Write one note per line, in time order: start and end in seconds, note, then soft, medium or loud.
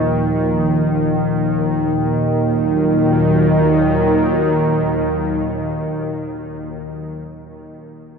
0.00 1.96 D#2 medium
0.00 1.97 A#2 medium
0.00 1.96 D#3 medium
0.00 1.97 F3 medium
0.00 1.97 D#4 medium
1.97 5.74 D#2 medium
1.97 5.76 A#2 medium
1.97 5.73 D#3 medium
2.17 5.93 F#3 medium
2.32 6.08 D#4 medium